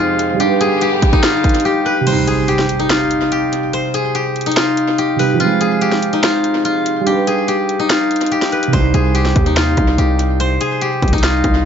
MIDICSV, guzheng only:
0, 0, Header, 1, 2, 480
1, 0, Start_track
1, 0, Key_signature, -3, "minor"
1, 0, Tempo, 416667
1, 461, Time_signature, 4, 2, 24, 8
1, 13422, End_track
2, 0, Start_track
2, 0, Title_t, "Guzheng"
2, 0, Program_c, 0, 107
2, 0, Note_on_c, 0, 63, 72
2, 0, Note_on_c, 0, 65, 83
2, 0, Note_on_c, 0, 67, 84
2, 0, Note_on_c, 0, 71, 83
2, 455, Note_off_c, 0, 67, 0
2, 459, Note_on_c, 0, 67, 88
2, 660, Note_off_c, 0, 71, 0
2, 700, Note_on_c, 0, 68, 81
2, 769, Note_off_c, 0, 67, 0
2, 940, Note_on_c, 0, 67, 80
2, 1009, Note_off_c, 0, 68, 0
2, 1295, Note_off_c, 0, 63, 0
2, 1299, Note_on_c, 0, 63, 82
2, 1415, Note_off_c, 0, 65, 0
2, 1420, Note_on_c, 0, 65, 84
2, 1897, Note_off_c, 0, 67, 0
2, 1902, Note_on_c, 0, 67, 87
2, 2140, Note_on_c, 0, 71, 78
2, 2380, Note_on_c, 0, 72, 90
2, 2449, Note_off_c, 0, 71, 0
2, 2619, Note_on_c, 0, 68, 74
2, 2688, Note_off_c, 0, 67, 0
2, 2860, Note_on_c, 0, 67, 79
2, 2929, Note_off_c, 0, 68, 0
2, 3215, Note_off_c, 0, 63, 0
2, 3220, Note_on_c, 0, 63, 71
2, 3336, Note_off_c, 0, 65, 0
2, 3340, Note_on_c, 0, 65, 84
2, 3818, Note_off_c, 0, 67, 0
2, 3822, Note_on_c, 0, 67, 75
2, 4297, Note_off_c, 0, 72, 0
2, 4301, Note_on_c, 0, 72, 88
2, 4541, Note_on_c, 0, 68, 81
2, 4610, Note_off_c, 0, 67, 0
2, 4780, Note_on_c, 0, 67, 78
2, 4849, Note_off_c, 0, 68, 0
2, 5137, Note_off_c, 0, 63, 0
2, 5142, Note_on_c, 0, 63, 84
2, 5257, Note_off_c, 0, 65, 0
2, 5261, Note_on_c, 0, 65, 85
2, 5737, Note_off_c, 0, 67, 0
2, 5742, Note_on_c, 0, 67, 92
2, 5980, Note_on_c, 0, 71, 85
2, 6050, Note_off_c, 0, 72, 0
2, 6216, Note_off_c, 0, 65, 0
2, 6220, Note_on_c, 0, 65, 93
2, 6462, Note_on_c, 0, 68, 82
2, 6531, Note_off_c, 0, 67, 0
2, 6700, Note_on_c, 0, 67, 84
2, 6769, Note_off_c, 0, 68, 0
2, 7057, Note_off_c, 0, 63, 0
2, 7062, Note_on_c, 0, 63, 77
2, 7176, Note_off_c, 0, 65, 0
2, 7181, Note_on_c, 0, 65, 79
2, 7655, Note_off_c, 0, 65, 0
2, 7660, Note_on_c, 0, 65, 84
2, 8134, Note_off_c, 0, 67, 0
2, 8139, Note_on_c, 0, 67, 91
2, 8341, Note_off_c, 0, 71, 0
2, 8379, Note_on_c, 0, 68, 85
2, 8448, Note_off_c, 0, 67, 0
2, 8620, Note_on_c, 0, 67, 79
2, 8689, Note_off_c, 0, 68, 0
2, 8975, Note_off_c, 0, 63, 0
2, 8979, Note_on_c, 0, 63, 81
2, 9094, Note_off_c, 0, 65, 0
2, 9099, Note_on_c, 0, 65, 86
2, 9576, Note_off_c, 0, 67, 0
2, 9581, Note_on_c, 0, 67, 85
2, 9819, Note_on_c, 0, 71, 78
2, 10058, Note_on_c, 0, 72, 90
2, 10127, Note_off_c, 0, 71, 0
2, 10299, Note_on_c, 0, 68, 72
2, 10368, Note_off_c, 0, 67, 0
2, 10538, Note_on_c, 0, 67, 80
2, 10607, Note_off_c, 0, 68, 0
2, 10894, Note_off_c, 0, 63, 0
2, 10899, Note_on_c, 0, 63, 70
2, 11014, Note_off_c, 0, 65, 0
2, 11018, Note_on_c, 0, 65, 83
2, 11497, Note_off_c, 0, 67, 0
2, 11502, Note_on_c, 0, 67, 74
2, 11976, Note_off_c, 0, 72, 0
2, 11981, Note_on_c, 0, 72, 87
2, 12220, Note_on_c, 0, 68, 81
2, 12289, Note_off_c, 0, 67, 0
2, 12460, Note_on_c, 0, 67, 75
2, 12529, Note_off_c, 0, 68, 0
2, 12817, Note_off_c, 0, 63, 0
2, 12822, Note_on_c, 0, 63, 83
2, 12935, Note_off_c, 0, 65, 0
2, 12940, Note_on_c, 0, 65, 87
2, 13415, Note_off_c, 0, 67, 0
2, 13422, Note_off_c, 0, 63, 0
2, 13422, Note_off_c, 0, 65, 0
2, 13422, Note_off_c, 0, 72, 0
2, 13422, End_track
0, 0, End_of_file